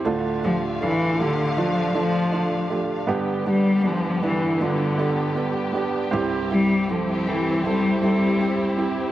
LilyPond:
<<
  \new Staff \with { instrumentName = "Grand piano" } { \time 4/4 \key d \dorian \tempo 4 = 79 <a d' f'>8 <a d' g'>8 <a d' f''>8 <a d' g'>8 <a d' f'>8 <a d' f'>8 <a d' f'>8 <a d' g'>8 | <b d' g'>8 <b d' g'>8 <b d' g'>8 <b d' e'>8 <b d' f'>8 <b d' a'>8 <b d' g'>8 <b d' g'>8 | <c' e' g'>8 <c' e' g'>8 <c' e' a'>8 <c' e' a'>8 <c' e' a'>8 <c' e' a'>8 <c' e' g'>8 <c' e' g'>8 | }
  \new Staff \with { instrumentName = "Grand piano" } { \clef bass \time 4/4 \key d \dorian <d, a,>1 | <g, d>1 | <c, g,>1 | }
  \new Staff \with { instrumentName = "Steel-string acoustic guitar" } { \time 4/4 \key d \dorian d8 f'8 d'8 f'8 d'8 a'8 d'8 f'8 | g,8 d'8 b8 d'8 b8 g'8 b8 d'8 | c8 e'8 c'8 e'8 c'8 g'8 c'8 e'8 | }
  \new Staff \with { instrumentName = "String section" } { \time 4/4 \key d \dorian << { f''1 | <g g'>1~ | <g g'>1 | } \\ { <d a>1 | <d b>1 | <c' e'>1 | } >> }
  \new Staff \with { instrumentName = "Cello" } { \clef bass \time 4/4 \key d \dorian r8 f8 e8 d8 f8 f4 r8 | r8 g8 f8 e8 d4 r4 | r8 g8 f8 e8 g8 g4 r8 | }
>>